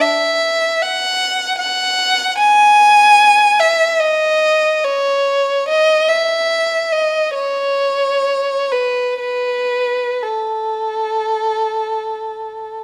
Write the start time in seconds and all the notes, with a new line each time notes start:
0.01 E5
0.82 F#5
1.58 F#5
2.38 G#5
3.60 E5
4.00 D#5
4.84 C#5
5.68 D#5
6.08 E5
6.92 D#5
7.34 C#5
8.71 B4
9.19 B4
10.22 A4